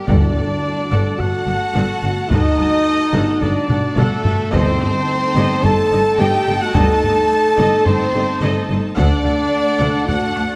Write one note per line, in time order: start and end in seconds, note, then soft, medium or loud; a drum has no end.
0.07 0.16 G1 loud
0.07 0.16 G2 loud
0.07 0.88 G2 loud
0.07 4.53 A3 medium
0.07 1.17 D4 loud
0.07 4.54 F#4 loud
0.07 0.34 A4 medium
0.07 4.53 A4 medium
0.07 1.19 D5 loud
0.07 1.20 D5 loud
0.07 1.21 D5 loud
0.07 0.34 F#5 medium
0.07 4.53 A5 loud
0.07 taiko loud
0.35 0.43 G1 medium
0.35 0.43 G2 medium
0.35 0.45 A4 medium
0.35 0.44 F#5 medium
0.92 1.00 G1 loud
0.92 1.00 G2 medium
0.92 1.18 A4 medium
0.92 1.18 F#5 medium
1.18 1.27 G1 medium
1.18 1.27 G2 medium
1.18 2.28 F#4 loud
1.18 1.28 A4 medium
1.18 2.30 F#5 loud
1.18 2.31 F#5 loud
1.18 2.03 F#5 loud
1.18 1.28 F#5 medium
1.18 taiko low medium
1.47 1.55 G1 medium
1.47 1.55 G2 medium
1.47 1.56 A4 medium
1.47 1.55 F#5 medium
1.75 1.83 G1 loud
1.75 1.83 G2 loud
1.75 2.01 A4 medium
1.75 2.01 F#5 loud
2.02 2.10 G1 medium
2.02 2.11 G2 medium
2.02 2.11 A4 medium
2.02 2.11 F#5 medium
2.29 2.38 G1 loud
2.29 2.39 G2 loud
2.29 3.41 D#4 loud
2.29 2.56 A4 loud
2.29 3.40 D#5 loud
2.29 3.42 D#5 loud
2.29 3.44 D#5 loud
2.29 2.57 F#5 medium
2.29 taiko loud
2.58 2.67 G1 medium
2.58 2.67 G2 medium
2.58 2.66 A4 medium
2.58 2.66 F#5 medium
3.13 3.21 G1 loud
3.13 3.22 G2 loud
3.13 3.40 A4 loud
3.13 3.40 F#5 loud
3.41 3.50 G1 medium
3.41 3.50 G2 medium
3.41 3.97 D4 loud
3.41 3.50 A4 medium
3.41 3.96 D5 loud
3.41 4.00 D5 loud
3.41 3.50 F#5 medium
3.41 taiko low medium
3.69 3.77 G1 medium
3.69 3.78 G2 medium
3.69 3.78 A4 medium
3.69 3.78 F#5 loud
3.69 taiko low-mid loud
3.97 4.05 G1 loud
3.97 4.06 G2 loud
3.97 4.53 A3 loud
3.97 4.53 A4 loud
3.97 4.23 A4 loud
3.97 4.53 A4 loud
3.97 4.55 A4 loud
3.97 4.23 F#5 loud
3.97 taiko low-mid loud
4.25 4.33 G1 medium
4.25 4.34 G2 medium
4.25 4.34 A4 medium
4.25 4.33 F#5 medium
4.25 taiko low loud
4.53 4.61 G1 loud
4.53 5.33 G2 loud
4.53 4.62 G2 loud
4.53 8.94 A3 loud
4.53 5.64 C4 loud
4.53 8.98 D#4 loud
4.53 4.79 A4 loud
4.53 8.94 A4 loud
4.53 5.62 C5 loud
4.53 5.66 C5 loud
4.53 4.79 D#5 loud
4.53 8.94 A5 loud
4.53 taiko loud
4.81 4.89 G1 medium
4.81 4.89 G2 medium
4.81 4.89 A4 medium
4.81 4.89 D#5 medium
4.81 taiko rim soft
5.36 5.44 G1 loud
5.36 5.45 G2 loud
5.36 5.62 A4 loud
5.36 5.62 D#5 loud
5.63 5.72 G1 loud
5.63 5.73 G2 medium
5.63 6.20 A4 loud
5.63 5.72 A4 medium
5.63 5.71 D#5 loud
5.63 6.20 A5 loud
5.63 taiko low medium
5.92 6.00 G1 medium
5.92 6.00 G2 medium
5.92 6.00 A4 medium
5.92 6.00 D#5 loud
6.19 6.27 G1 loud
6.19 6.28 G2 loud
6.19 6.49 G4 loud
6.19 6.45 A4 loud
6.19 6.46 D#5 loud
6.19 6.60 G5 loud
6.19 6.62 G5 loud
6.19 6.63 G5 loud
6.47 6.55 G1 medium
6.47 6.56 G2 medium
6.47 6.55 A4 loud
6.47 6.55 D#5 medium
6.60 6.75 F#4 loud
6.60 6.75 F#5 loud
6.60 6.77 F#5 loud
6.75 6.83 G1 loud
6.75 6.83 G2 loud
6.75 7.01 A4 loud
6.75 7.87 A4 loud
6.75 7.01 D#5 loud
6.75 7.84 A5 loud
6.75 7.86 A5 loud
6.75 7.88 A5 loud
6.75 taiko loud
7.02 7.10 G1 medium
7.02 7.11 G2 medium
7.02 7.10 A4 medium
7.02 7.10 D#5 medium
7.58 7.66 G1 loud
7.58 7.67 G2 loud
7.58 7.84 A4 loud
7.58 7.84 D#5 loud
7.86 7.94 G1 medium
7.86 7.95 G2 medium
7.86 8.70 C4 loud
7.86 7.94 A4 medium
7.86 8.69 C5 loud
7.86 8.70 C5 loud
7.86 7.94 D#5 medium
7.86 taiko low medium
8.14 8.22 G1 medium
8.14 8.23 G2 loud
8.14 8.23 A4 loud
8.14 8.22 D#5 medium
8.42 8.50 G1 loud
8.42 8.50 G2 loud
8.42 8.68 A4 loud
8.42 8.68 D#5 loud
8.69 8.77 G1 medium
8.69 8.78 G2 medium
8.69 8.78 A4 medium
8.69 8.79 D#5 medium
8.96 9.05 D2 loud
8.96 9.06 D2 loud
8.96 10.56 A3 loud
8.96 10.04 D4 loud
8.96 10.56 D4 loud
8.96 9.23 A4 loud
8.96 10.56 A4 loud
8.96 10.04 D5 loud
8.96 10.05 D5 loud
8.96 9.23 F#5 loud
8.96 10.56 F#5 loud
8.96 taiko loud
9.25 9.33 D2 medium
9.25 9.33 A4 medium
9.25 9.33 F#5 medium
9.80 9.88 D2 loud
9.80 9.89 D2 loud
9.80 10.06 A4 medium
9.80 10.06 F#5 loud
10.07 10.16 D2 medium
10.07 10.17 D2 medium
10.07 10.56 F#4 loud
10.07 10.16 A4 medium
10.07 10.56 F#5 loud
10.07 10.16 F#5 medium
10.07 10.56 F#5 loud
10.07 taiko low medium
10.35 10.43 D2 medium
10.35 10.45 D2 medium
10.35 10.45 A4 medium
10.35 10.44 F#5 medium
10.35 taiko rim soft